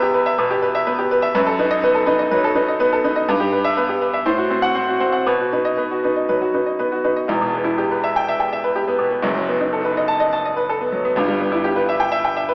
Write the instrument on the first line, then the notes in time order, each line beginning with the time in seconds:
grand piano
Already playing: E2 B3 G4 B4 E5
0.02 G4
0.14 B4
0.26 E5
0.38 B2 B4
0.51 G4
0.62 B4
0.75 E5
0.87 B3 B4
0.99 G4
1.11 B4
1.22 E5
1.35 F#2 B4
1.47 A4
1.59 D#4 B4
1.71 D#5
1.83 B3 B4
1.95 A4
2.07 D#4 B4
2.19 D#5
2.31 F#3 B4
2.44 A4
2.55 D#4 B4
2.68 D#5
2.79 B3 B4
2.92 A4
3.04 D#4 B4
3.16 D#5
3.28 G2 B4
3.40 G4
3.52 B4
3.64 E5
3.77 B3 B4
3.89 G4
4.02 B4
4.14 E5
4.26 A2 C5
4.38 F#4
4.50 C4 C5
4.62 F#5
4.75 C4 C5
4.88 F#4
5.00 C4 C5
5.12 F#5
5.26 B2 B4
5.41 F#4
5.52 D#4 B4
5.65 D#5
5.77 B3 B4
5.91 F#4
6.04 D#4 B4
6.16 D#5
6.29 F#3 B4
6.41 F#4
6.54 D#4 B4
6.66 D#5
6.79 B3 B4
6.92 F#4
7.04 D#4 B4
7.16 D#5
7.28 E1 E2
7.41 B2
7.54 B3
7.65 E4
7.78 G4
7.92 B4
8.04 E5
8.16 G5
8.29 E5
8.40 G5
8.53 E5
8.64 B4
8.76 G4
8.88 B3
8.99 B2
9.10 B3
9.23 F#1 F#2
9.36 F#3
9.48 B3
9.61 D#4
9.73 A4
9.85 B4
9.97 D#5
10.08 A5
10.20 D#5
10.33 A5
10.45 D#5
10.56 B4
10.69 A4
10.81 B3
10.92 F#3
11.05 B3
11.16 G1 G2
11.28 G3
11.40 B3
11.52 E4
11.64 G4
11.76 B4
11.89 E5
12.00 G5
12.12 E5
12.24 G5
12.37 E5
12.49 B4